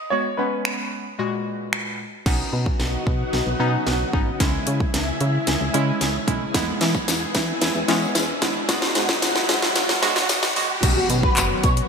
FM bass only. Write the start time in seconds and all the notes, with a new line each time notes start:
2.26 B1
2.53 B2
2.80 B1
3.07 B2
3.33 B1
3.47 B1
3.60 B2
3.87 B1
4.13 G#1
4.40 C#2
4.67 C#3
4.94 C#2
5.21 C#3
5.48 C#2
5.61 C#2
5.74 C#3
6.01 C#2
6.28 B1
6.54 E2
6.81 E3
7.08 E2
7.35 E3
7.62 E2
7.75 E2
7.89 E3
8.15 E2
8.42 D#2
8.69 G#1
8.96 G#2
9.22 G#1
9.49 G#2
9.76 G#1
9.89 G#1
10.03 G#2
10.29 G#1
10.56 F#1
10.83 B1
11.10 B2
11.37 F#1
11.64 B2